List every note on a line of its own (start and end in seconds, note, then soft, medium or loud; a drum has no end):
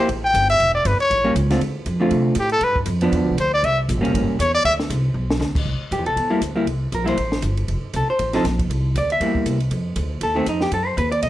0.09 0.33 A1 medium
0.09 kick soft
0.09 ride medium
0.24 0.47 G5 loud
0.34 0.58 G1 medium
0.34 kick soft
0.34 hi-hat pedal medium
0.34 ride medium
0.50 0.73 E5 loud
0.50 ride medium
0.59 0.84 E1 medium
0.59 kick soft
0.59 ride medium
0.75 0.89 D5 medium
0.85 0.98 G1 loud
0.85 1.00 B4 medium
0.85 kick soft
0.85 hi-hat pedal medium
0.85 ride medium
0.98 1.33 C#5 loud
0.98 muted upright bass stroke soft
0.98 ride soft
1.10 1.35 A1 medium
1.10 kick soft
1.10 ride medium
1.24 1.34 G3 medium
1.24 1.34 A#3 medium
1.24 1.34 C#4 medium
1.36 1.60 C#2 loud
1.36 kick soft
1.36 hi-hat pedal medium
1.36 ride medium
1.50 1.60 D3 medium
1.50 1.60 A3 medium
1.50 1.60 C4 medium
1.50 1.60 F4 medium
1.50 snare soft
1.50 ride medium
1.60 1.85 D2 medium
1.60 kick soft
1.60 ride medium
1.86 2.10 F2 medium
1.86 kick soft
1.86 hi-hat pedal soft
1.86 ride medium
2.00 2.34 D3 medium
2.00 2.34 A3 medium
2.00 2.34 C4 medium
2.00 2.35 F4 medium
2.11 2.35 C3 medium
2.11 kick soft
2.11 ride medium
2.35 2.61 A2 loud
2.35 kick soft
2.35 hi-hat pedal medium
2.35 ride medium
2.40 2.52 G4 medium
2.49 2.65 A4 loud
2.49 ride soft
2.61 2.86 G2 medium
2.61 2.77 B4 medium
2.61 kick soft
2.61 ride medium
2.76 kick medium
2.86 3.11 F2 loud
2.86 kick soft
2.86 hi-hat pedal medium
2.86 ride medium
3.01 3.36 F3 medium
3.01 3.36 B3 medium
3.01 3.36 D4 medium
3.01 ride medium
3.12 3.22 E2 loud
3.12 kick soft
3.12 ride medium
3.22 3.29 D2 medium
3.30 3.37 B1 medium
3.38 3.62 D2 loud
3.38 3.53 C5 medium
3.38 kick soft
3.38 hi-hat pedal medium
3.38 ride medium
3.54 3.66 D5 loud
3.63 3.87 C2 medium
3.63 3.79 E5 loud
3.63 kick soft
3.63 ride medium
3.89 3.96 A#1 loud
3.89 kick soft
3.89 hi-hat pedal medium
3.89 ride medium
3.96 4.04 G1 medium
4.01 4.13 E1 medium
4.01 4.36 G3 medium
4.01 4.36 A#3 medium
4.01 4.37 C#4 medium
4.01 ride medium
4.14 4.21 A1 loud
4.14 kick soft
4.14 ride medium
4.21 4.29 G1 medium
4.30 4.38 E1 medium
4.39 4.63 E2 loud
4.39 4.53 C#5 loud
4.39 kick soft
4.39 hi-hat pedal medium
4.39 ride medium
4.54 4.64 D5 loud
4.64 4.89 D2 medium
4.64 4.74 E5 loud
4.64 kick soft
4.64 ride medium
4.80 snare medium
4.90 5.14 C2 loud
4.90 kick soft
4.90 hi-hat pedal medium
4.90 ride medium
5.14 5.39 B1 medium
5.30 snare medium
5.40 5.64 D2 loud
5.40 snare medium
5.40 hi-hat pedal medium
5.55 kick medium
5.55 crash medium
5.65 5.79 C2 medium
5.65 kick soft
5.80 muted upright bass stroke soft
5.91 5.99 G2 loud
5.91 6.06 G4 medium
5.91 kick soft
5.91 hi-hat pedal medium
5.91 ride medium
5.99 6.06 E2 medium
6.06 6.15 C2 medium
6.06 6.39 A4 medium
6.06 ride soft
6.16 6.41 E2 medium
6.16 kick soft
6.16 ride medium
6.30 6.40 G3 medium
6.30 6.40 A#3 medium
6.30 6.40 E4 medium
6.42 6.66 D2 medium
6.42 kick soft
6.42 hi-hat pedal medium
6.42 ride medium
6.56 6.65 G3 medium
6.56 6.65 A#3 medium
6.56 6.66 E4 medium
6.67 6.91 C2 medium
6.67 kick soft
6.67 ride medium
6.92 7.17 A#1 medium
6.92 7.08 A#4 medium
6.92 kick soft
6.92 hi-hat pedal soft
6.92 ride medium
7.04 7.15 G3 medium
7.04 7.16 A#3 medium
7.04 7.16 E4 medium
7.04 ride medium
7.08 7.41 C5 medium
7.17 7.42 A1 medium
7.17 kick soft
7.17 ride medium
7.32 snare medium
7.42 7.67 G1 loud
7.42 kick soft
7.42 hi-hat pedal medium
7.42 ride medium
7.57 ride soft
7.68 7.81 F1 medium
7.68 kick soft
7.68 ride medium
7.82 muted upright bass stroke soft
7.93 8.07 C2 medium
7.93 8.09 A4 medium
7.93 kick soft
7.93 hi-hat pedal medium
7.93 ride medium
8.10 8.35 C5 medium
8.19 8.43 A1 medium
8.19 kick soft
8.19 ride medium
8.33 8.43 F3 medium
8.33 8.43 C4 medium
8.33 8.43 D#4 medium
8.33 8.44 A4 medium
8.33 snare soft
8.33 ride soft
8.44 8.69 A#1 medium
8.44 kick soft
8.44 snare soft
8.44 hi-hat pedal medium
8.44 ride medium
8.59 kick medium
8.59 ride medium
8.70 8.94 C2 medium
8.70 kick soft
8.70 ride medium
8.95 9.20 D2 medium
8.95 9.10 D5 medium
8.95 kick soft
8.95 hi-hat pedal medium
8.95 ride medium
9.10 9.44 E5 loud
9.10 ride medium
9.20 9.45 E2 medium
9.20 9.58 G3 medium
9.20 9.58 A#3 medium
9.20 9.58 E4 medium
9.20 kick soft
9.20 ride medium
9.35 kick soft
9.45 9.70 C2 medium
9.45 kick soft
9.45 hi-hat pedal medium
9.45 ride medium
9.60 ride soft
9.71 9.95 F2 medium
9.71 kick soft
9.71 ride medium
9.96 10.20 D2 medium
9.96 kick soft
9.96 hi-hat pedal medium
9.96 ride medium
10.21 10.46 D#2 medium
10.21 10.36 A4 medium
10.21 kick soft
10.21 ride medium
10.35 10.45 D#3 medium
10.35 10.46 A3 medium
10.35 10.46 C4 medium
10.46 10.71 F2 medium
10.46 10.62 D#4 medium
10.46 kick soft
10.46 hi-hat pedal medium
10.46 ride medium
10.61 10.72 G4 medium
10.61 snare soft
10.71 10.96 F#2 medium
10.71 10.86 A4 medium
10.71 kick soft
10.71 ride medium
10.86 10.97 C5 loud
10.97 11.22 D#2 loud
10.97 11.11 B4 medium
10.97 kick soft
10.97 hi-hat pedal medium
10.97 ride medium
11.12 11.22 D5 loud
11.12 ride medium
11.23 11.29 B1 medium
11.23 11.29 D#5 medium
11.23 kick soft
11.23 ride medium